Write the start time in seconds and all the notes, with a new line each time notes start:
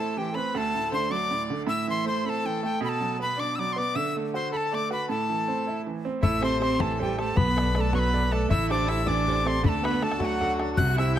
Already playing: A2 E4 A4 A5
0.12 A5
0.17 E3 G4 G5
0.32 C4 A4 B5
0.37 B4
0.54 D2 A4 A5 B5
0.75 A2
0.91 D3 C5 C6
1.10 F#3 D5 D6
1.31 A2
1.50 D3
1.67 A2 E5 E6
1.87 E3 C6
2.05 A3 C5 C6
2.25 C4 A4 B5
2.29 A5
2.45 E3 G5
2.63 A3 G5
2.81 B2 A4 B5
2.89 A5
3.00 F#3
3.20 B3 B4 B5
3.37 D4 D5 D6
3.55 F#3 D5 D6 E6
3.73 B3 D5 C6
3.78 D6
3.94 D3 E5 E6
4.17 A3
4.34 F#4 C5 C6
4.51 A4 B5
4.57 A5
4.71 A3 D5 D6
4.90 F#4 B4 B5
5.08 A2 A4 A5
5.30 E3
5.48 C4
5.67 E4
5.87 E3
6.05 C4
6.21 A1 A3 E4 E5 E6, bodhran
6.41 C4 G4 A4 C5 C6, bodhran
6.60 C4 G4 A4 C5 C6, bodhran
6.79 E3 A3 A4 A5, bodhran
6.98 G3 G4 A4 C5 G5, bodhran
7.18 A3 G4 A4 C5 A5, bodhran
7.35 B1 B3 B4 B5, bodhran
7.56 A4 B4 D5, bodhran
7.74 A3 A4 B4 D5 B5, bodhran
7.81 A5
7.92 F#3 B3 B4 C#6, bodhran
7.99 B5
8.13 A4 B4 D5, bodhran
8.31 A3 A4 B4 D5 A5, bodhran
8.49 A1 A3 E4 E5 E6, bodhran
8.70 D4 G4 A4 C5 D5 D6, bodhran
8.87 E4 G4 A4 C5 E5 E6, bodhran
9.06 E3 D4 D5 D6, bodhran
9.27 G4 A4 C5, bodhran
9.44 C4 G4 A4 C5 C6, bodhran
9.62 D2 D3 A3 A4 B5, bodhran
9.69 A5
9.83 B3 D4 F#4 A4 B4 B5, bodhran
10.01 A3 D4 F#4 A4 A5, bodhran
10.11 bodhran
10.19 F#3 A3 F#4 A5, bodhran
10.25 F#5
10.40 D4 F#4 A4, bodhran
10.59 D4 F#4 A4, bodhran
10.76 C2 C3 F#4 F#5 F#6, bodhran
10.96 C4 E4 G4 E5 E6, bodhran
11.15 C4 G4 G5 G6